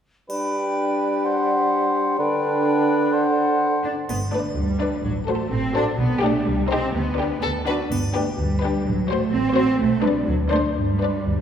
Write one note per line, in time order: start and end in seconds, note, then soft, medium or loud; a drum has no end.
0.29 2.15 G3 soft
0.29 2.15 D4 soft
0.29 1.27 B4 soft
0.29 1.26 G5 soft
0.29 triangle soft
1.24 2.19 C5 soft
1.24 2.19 F#5 soft
2.19 3.81 D3 medium
2.19 3.81 D4 soft
2.19 3.14 B4 soft
2.19 3.11 G5 soft
3.13 3.85 C5 soft
3.13 3.83 F#5 soft
3.84 3.92 D4 medium
4.09 4.46 G1 soft
4.09 4.17 B3 medium
4.09 triangle soft
4.32 4.40 A3 soft
4.32 4.50 D4 soft
4.32 4.50 B4 soft
4.32 4.51 D5 soft
4.56 4.94 D2 soft
4.56 5.02 G3 soft
4.81 4.98 D4 soft
4.81 4.98 B4 soft
4.81 4.98 D5 soft
5.03 5.41 A1 soft
5.03 5.12 F#3 medium
5.27 5.51 A3 medium
5.27 5.45 F#4 soft
5.27 5.45 A4 soft
5.27 5.45 C5 soft
5.51 5.89 A1 medium
5.51 5.75 C4 medium
5.75 5.83 D4 medium
5.75 5.92 F#4 soft
5.75 5.93 A4 medium
5.75 5.93 C5 soft
5.98 6.36 B1 medium
5.98 6.22 B3 medium
6.22 6.46 A3 medium
6.22 6.40 D4 medium
6.22 6.40 G4 medium
6.22 6.40 D5 soft
6.46 6.84 C2 medium
6.46 6.70 G3 medium
6.69 6.93 C4 medium
6.69 6.88 D#4 soft
6.69 6.88 G4 soft
6.69 6.88 C5 soft
6.94 7.32 D2 medium
6.94 7.41 B3 soft
7.18 7.36 D4 soft
7.18 7.37 G4 soft
7.18 7.36 B4 soft
7.42 7.81 D2 soft
7.42 7.50 A4 soft
7.66 7.75 D4 medium
7.66 7.85 D4 soft
7.66 7.85 F#4 soft
7.66 7.74 B4 soft
7.91 8.29 G1 soft
7.91 7.99 B3 soft
7.91 triangle soft
8.14 8.23 A3 soft
8.14 8.33 D4 soft
8.14 8.33 G4 soft
8.14 8.32 B4 soft
8.39 8.76 D2 soft
8.39 8.85 G3 medium
8.63 8.80 D4 soft
8.63 8.80 G4 soft
8.63 8.80 B4 soft
8.86 9.23 A1 soft
8.86 9.09 F#3 soft
9.09 9.33 A3 medium
9.09 9.26 F#4 soft
9.09 9.26 C5 soft
9.09 9.27 C5 soft
9.33 9.70 A1 medium
9.33 9.55 C4 medium
9.55 9.79 C4 medium
9.55 9.73 F#4 soft
9.55 9.73 C5 soft
9.55 9.73 C5 medium
9.79 10.16 B1 medium
9.79 10.02 A3 medium
10.03 10.27 G3 medium
10.03 10.20 D4 medium
10.03 10.20 B4 medium
10.03 10.20 D5 soft
10.26 10.65 D2 medium
10.26 10.34 F#3 medium
10.51 10.59 A3 medium
10.51 10.69 D4 soft
10.51 10.69 C5 soft
10.51 10.69 D5 soft
10.75 11.15 G2 soft
10.75 11.41 G3 soft
11.02 11.20 D4 soft
11.02 11.20 B4 soft
11.02 11.20 D5 soft
11.26 11.41 D2 soft